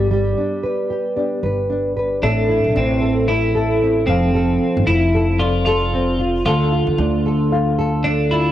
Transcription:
Already playing: G1 B3 G4 D5
0.11 G3
0.38 D4
0.63 B4
0.90 G4
1.16 B3 D4 G4 D5
1.43 G1 B4
1.70 D4
1.97 B4
2.22 A1 A2 C4 D4 A4 E5
2.49 E4
2.64 B1
2.76 A1 C4
3.01 A4
3.27 C4 E4 A4 E5
3.55 A4
3.82 C4
4.07 F1 F3 C4 A4 F5
4.34 F3 A4
4.77 G1
4.87 F1 C4 E4
5.15 A4
5.39 C4 F4 A4 D5
5.66 F4 A4
5.94 C4
6.19 F4
6.45 D2 D3 D4 F4 A4 F5
6.72 F4
6.87 E2
6.98 D2 D4
7.26 A4
7.50 D4 F4 A4 F5
7.79 A4
8.04 D4
8.31 E4 F4

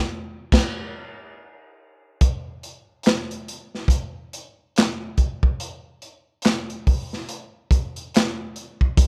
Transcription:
0.52 kick, snare, crash
2.21 kick, closed hi-hat
2.63 closed hi-hat
3.03 snare, clap, closed hi-hat
3.31 closed hi-hat
3.48 closed hi-hat
3.75 snare
3.88 kick, closed hi-hat
4.33 closed hi-hat
4.76 snare, clap, closed hi-hat
5.18 kick, closed hi-hat
5.43 kick
5.60 closed hi-hat
6.02 closed hi-hat
6.42 snare, clap, closed hi-hat
6.70 closed hi-hat
6.87 kick, open hi-hat
7.13 snare
7.29 closed hi-hat
7.71 kick, closed hi-hat
7.96 closed hi-hat
8.14 snare, clap, closed hi-hat
8.56 closed hi-hat
8.81 kick
8.97 kick, closed hi-hat

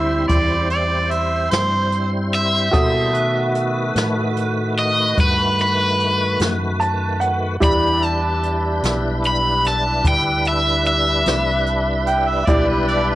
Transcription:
Already playing: D2 G3 C4 E4 C5 D5 E5 B5
0.28 E2 D5, kick, closed hi-hat
0.70 D5, closed hi-hat
1.11 E5, closed hi-hat
1.51 G2 C5, snare, closed hi-hat
1.92 closed hi-hat
2.33 E5, closed hi-hat
2.71 B2 G3 A#3 E4 F#4 A4 C5 D#6, kick, closed hi-hat
3.13 D#3 A3 F#4 B4, closed hi-hat
3.55 closed hi-hat
3.95 A2, snare, closed hi-hat
4.36 closed hi-hat
4.77 D#5, closed hi-hat
5.18 G2 B4, kick, closed hi-hat
5.59 B4, closed hi-hat
6.00 closed hi-hat
6.39 F#2, snare, closed hi-hat
6.80 A5, closed hi-hat
7.20 F#5, closed hi-hat
7.60 E2 G3 D4 E4 G4 B4 D5 B5, kick, closed hi-hat
8.03 A5, closed hi-hat
8.43 closed hi-hat
8.83 B1, snare, closed hi-hat
9.24 B5, closed hi-hat
9.64 A5, snare, closed hi-hat
10.04 D2 G5, kick, closed hi-hat
10.45 E5, closed hi-hat
10.85 E5, closed hi-hat
11.26 C2, snare, closed hi-hat
11.66 closed hi-hat
12.07 G5, closed hi-hat
12.28 E5
12.47 B1 G3 D4 E4 G4 B4 D5, kick, closed hi-hat
12.68 B4
12.87 D5, closed hi-hat
13.09 B4

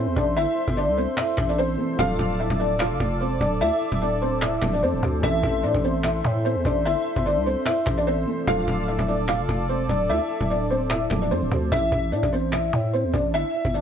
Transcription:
Already playing: E3 A3 C4 A4 C5 E5 C6
0.07 E2
0.16 A1 D4 D5, cajon bass
0.37 G1 E4 E5, cajon slap
0.48 cajon slap
0.57 cajon slap
0.68 G1, cajon bass
0.77 D4 D5, cajon slap
0.88 C2, cajon slap
0.97 C4 C5
1.08 cajon slap
1.17 E4 E5, cajon slap
1.29 cajon slap
1.37 A1, cajon bass, cajon slap
1.49 D4 D5, cajon slap
1.58 C4 C5, cajon slap
1.77 E3 A3 C4 A4, cajon slap
1.95 D1 F3 A3 D5 F5 A5 D6, cajon bass
1.99 D4 F4 A4
2.10 cajon slap
2.19 D1, cajon bass
2.39 E4 E5, cajon slap
2.50 D1, cajon bass
2.60 D4 D5
2.71 cajon slap
2.79 F4 F5, cajon slap
2.91 F1
3.00 F1, cajon bass
3.11 cajon slap
3.21 E1 C4 C5, cajon slap
3.41 D1 D4 D5, cajon bass
3.61 D2 E4 E5, cajon slap
3.72 cajon slap
3.81 cajon slap
3.92 D1, cajon bass
4.02 D4 D5
4.12 cajon slap
4.22 C4 C5
4.33 cajon slap
4.41 E4 E5, cajon slap
4.61 D1 F3 A3 D4 A4, cajon bass, cajon slap
4.73 D4 D5, cajon slap
4.83 F2 C4 C5, cajon slap
4.93 D1
5.03 D2, cajon bass
5.20 A1 E3 A3 C5 E5 C6, cajon bass
5.24 C4 E4 A4
5.34 cajon slap
5.43 A1, cajon bass
5.54 cajon slap
5.63 A2 D4 D5, cajon slap
5.74 A1, cajon bass
5.84 C4 C5, cajon slap
5.95 cajon slap
6.03 E4 E5, cajon slap
6.15 cajon slap
6.25 A2, cajon bass
6.35 cajon slap
6.45 C4 C5, cajon slap
6.56 E2
6.65 A1 D4 D5, cajon bass
6.85 G1 E4 E5, cajon slap
6.96 cajon slap
7.05 cajon slap
7.16 G1, cajon bass
7.26 D4 D5, cajon slap
7.37 C2, cajon slap
7.46 C4 C5
7.57 cajon slap
7.66 E4 E5, cajon slap
7.77 cajon slap
7.86 A1, cajon bass, cajon slap
7.97 D4 D5, cajon slap
8.07 C4 C5, cajon slap
8.25 E3 A3 C4 A4, cajon slap
8.44 D1 F3 A3 A4 D5 F5 A5 D6, cajon bass
8.48 D4 F4 A4
8.58 cajon slap
8.68 D1, cajon bass
8.79 cajon slap
8.88 E4 E5, cajon slap
8.99 D1, cajon bass
9.08 D4 D5
9.19 cajon slap
9.28 F4 F5, cajon slap
9.39 F1
9.49 F1, cajon bass
9.60 cajon slap
9.69 E1 C4 C5, cajon slap
9.89 D1 D4 D5, cajon bass
10.09 D2 E4 E5, cajon slap
10.21 cajon slap
10.30 cajon slap
10.41 D1, cajon bass
10.50 D4 D5
10.61 cajon slap
10.70 C4 C5
10.81 cajon slap
10.90 E4 E5, cajon slap
11.01 cajon slap
11.10 D1 F3 A3 D4 A4, cajon bass, cajon slap
11.22 D4 D5, cajon slap
11.31 F2 C4 C5, cajon slap
11.42 D1
11.52 D2, cajon bass
11.72 A1 E4 E5, cajon bass
11.83 cajon slap
11.92 A1, cajon bass
12.03 cajon slap
12.12 A2 D4 D5, cajon slap
12.23 A1, cajon bass
12.33 C4 C5
12.44 cajon slap
12.52 E4 E5, cajon slap
12.64 cajon slap
12.73 A2, cajon bass
12.84 cajon slap
12.93 C4 C5, cajon slap
13.04 E2
13.14 A1 D4 D5, cajon bass
13.34 G1 E4 E5, cajon slap
13.45 cajon slap
13.54 cajon slap
13.65 G1, cajon bass
13.74 D4 D5, cajon slap

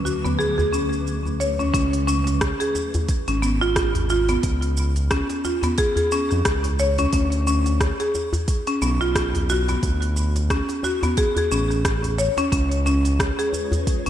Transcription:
Already playing: D2 D3 F#3 A3 B4 D6
0.05 F#4, djembe tone, shaker
0.25 B3, djembe slap, djembe bass, shaker
0.39 G#4, shaker
0.58 G#4, djembe bass, shaker
0.73 C#4, djembe tone, shaker
0.93 shaker
1.07 shaker
1.25 djembe tone, shaker
1.40 C#5, shaker
1.59 C#4, djembe tone, shaker
1.74 C#2 C#4, kick, open hi-hat, shaker
1.93 open hi-hat, shaker
2.07 C#4, djembe slap, shaker
2.27 open hi-hat, djembe slap, shaker
2.41 kick, cross-stick, open hi-hat, shaker
2.60 G#4, open hi-hat, djembe slap, shaker
2.75 djembe tone, shaker
2.94 open hi-hat, djembe slap, djembe bass, shaker
3.08 kick, open hi-hat, shaker
3.28 G#1 C#4, open hi-hat, shaker
3.42 B3, shaker
3.61 F4, shaker
3.76 kick, cross-stick, open hi-hat, shaker
3.95 open hi-hat, djembe bass, shaker
4.10 F4, djembe slap, shaker
4.29 B3, open hi-hat, djembe tone, shaker
4.43 C#2, kick, open hi-hat, shaker
4.62 open hi-hat, shaker
4.77 djembe slap, shaker
4.96 open hi-hat, djembe slap, shaker
5.11 C#4, kick, cross-stick, open hi-hat, shaker
5.29 open hi-hat, djembe slap, shaker
5.45 F4, djembe tone, shaker
5.63 B3, open hi-hat, djembe slap, djembe bass, shaker
5.78 G#4, kick, open hi-hat, shaker
5.96 G#4, open hi-hat, djembe bass, shaker
6.11 C#4, djembe tone, shaker
6.30 F2, cross-stick, shaker
6.45 C#2, kick, cross-stick, open hi-hat, shaker
6.64 open hi-hat, djembe tone, shaker
6.79 C#5, shaker
6.98 C#4, open hi-hat, djembe tone, shaker
7.13 D2 C#4, kick, open hi-hat, shaker
7.32 open hi-hat, shaker
7.47 C#4, djembe slap, shaker
7.66 open hi-hat, djembe slap, shaker
7.80 kick, cross-stick, open hi-hat, shaker
8.00 G#4, open hi-hat, djembe slap, shaker
8.15 djembe tone, shaker
8.33 open hi-hat, djembe slap, djembe bass, shaker
8.48 kick, open hi-hat, shaker
8.67 C#4, open hi-hat, shaker
8.82 B1 B3, shaker
9.01 F4, shaker
9.15 kick, cross-stick, open hi-hat, shaker
9.34 open hi-hat, djembe bass, shaker
9.50 F#4, djembe slap, shaker
9.68 B3, open hi-hat, djembe tone, shaker
9.83 D2, kick, open hi-hat, shaker
10.02 open hi-hat, shaker
10.16 djembe slap, shaker
10.36 open hi-hat, djembe slap, shaker
10.50 C#4, kick, cross-stick, open hi-hat, shaker
10.69 open hi-hat, djembe slap, shaker
10.83 F#4, djembe tone, shaker
11.03 B3, open hi-hat, djembe slap, djembe bass, shaker
11.17 G#4, kick, open hi-hat, shaker
11.36 G#4, open hi-hat, djembe tone, djembe bass, shaker
11.51 A1 C#4, djembe tone, shaker
11.70 cross-stick, shaker
11.85 kick, cross-stick, open hi-hat, shaker
12.03 open hi-hat, djembe tone, shaker
12.18 C#5, shaker
12.37 C#4, open hi-hat, djembe tone, shaker
12.52 C#2 G#3 C#4 F4 B4 C#5, kick, open hi-hat, shaker
12.71 open hi-hat, shaker
12.86 C#4, djembe slap, shaker
13.05 open hi-hat, djembe slap, shaker
13.20 kick, cross-stick, open hi-hat, shaker
13.39 G#4, open hi-hat, djembe slap, shaker
13.53 djembe tone, shaker
13.72 open hi-hat, djembe slap, djembe bass, shaker
13.87 kick, open hi-hat, shaker
14.06 G#1 C#4, open hi-hat, shaker

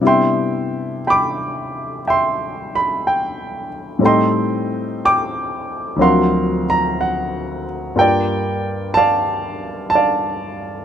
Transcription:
0.01 C3 G3 B3 D4 E4
0.07 E5 G5 C6
1.07 G5 B5 D6
2.07 E5 G5 C6
2.75 B5
3.07 G5
3.99 A2 G3 C4 D#4
4.03 A4 D#5 G5 C6
5.05 G5 D6
5.96 D2 D3 F#3 C4
6.00 F3 A#4 F5 F#5 C6
6.70 A#5
7.01 F#5
7.96 G2 G3 A#3 F4 A#4 G5
8.01 D5
8.94 D5 F5 A5
9.90 A5
9.95 D5 F5

